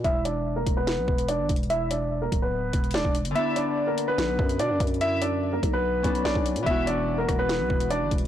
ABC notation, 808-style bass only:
X:1
M:4/4
L:1/16
Q:1/4=145
K:Edor
V:1 name="808-style bass" clef=bass
E,,,6 E,,,3 B,,, E,,,3 G,,, E,,,2- | E,,,6 D,,,4 E,,,2 E,,, E,,,2 G,,, | z8 ^A,,, B,,, F,,2 B,, F,, F,,2- | F,,6 B,,,4 B,,,2 B,,, B,,,2 B,, |
E,,,6 E,,,3 B,,, E,,,3 G,,, E,,,2 |]